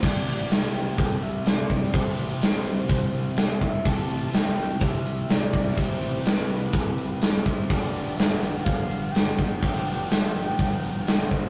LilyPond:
<<
  \new Staff \with { instrumentName = "Soft synth lead" } { \time 4/4 \key c \major \tempo 4 = 125 d''4 e''8 g''8 g''8 e''8 d''4 | c''2.~ c''8 e''8 | a''4 g''8 g''8 e''4 d''4 | c''4 b'2 r8 c''8 |
d''4 e''8 g''8 f''8 f''8 g''4 | g''2.~ g''8 c''8 | }
  \new Staff \with { instrumentName = "Overdriven electric guitar" } { \clef bass \time 4/4 \key c \major <c e g e' g'>1 | <c e g e' g'>1 | <c e g e' g'>1 | <c e g e' g'>1 |
<g, d f g b g'>1 | <g, d f g b g'>1 | }
  \new Staff \with { instrumentName = "Overdriven electric guitar" } { \clef bass \time 4/4 \key c \major <c g c' e'>2.~ <c g c' e'>8 <c g c' e'>8 | <c g c' e'>2.~ <c g c' e'>8 <c g c' e'>8 | <c g c' e'>2.~ <c g c' e'>8 <c g c' e'>8 | <c g c' e'>2.~ <c g c' e'>8 <c g c' e'>8 |
<g, d f b d'>2.~ <g, d f b d'>8 <g, d f b d'>8 | <g, d f b d'>2.~ <g, d f b d'>8 <g, d f b d'>8 | }
  \new Staff \with { instrumentName = "Fingered electric bass" } { \clef bass \time 4/4 \key c \major c,8 a,,8 c,8 c,8 c,8 c,8 c,8 c,8 | c,8 a,,8 c,8 c,8 c,8 c,8 c,8 c,8 | c,8 a,,8 c,8 c,8 c,8 c,8 c,8 c,8 | c,8 a,,8 c,8 c,8 c,8 c,8 c,8 c,8 |
g,,8 f,,8 g,,8 g,,8 g,,8 g,,8 g,,8 g,,8 | g,,8 f,,8 g,,8 g,,8 g,,8 g,,8 g,,8 g,,8 | }
  \new DrumStaff \with { instrumentName = "Drums" } \drummode { \time 4/4 <cymc bd>8 hho8 <hho sn>8 hho8 <hho bd>8 hho8 <hho sn>8 <hho bd>16 sn16 | <hho bd>8 hho8 <hho sn>8 hho8 <hho bd>8 hho8 <hho sn>8 <hho bd>8 | <hho bd>8 hho8 <hho sn>8 hho8 <hho bd>8 hho8 <hho sn>8 <hho bd>16 sn16 | <hho bd>8 hho8 <hho sn>8 hho8 <hho bd>8 hho8 <hho sn>8 <hho bd>8 |
<hho bd>8 hho8 <hho sn>8 hho8 <hho bd>8 hho8 <hho sn>8 <hho bd>8 | <hho bd>8 hho8 <hho sn>8 hho8 <hho bd>8 hho8 <hho sn>8 <hho bd>8 | }
>>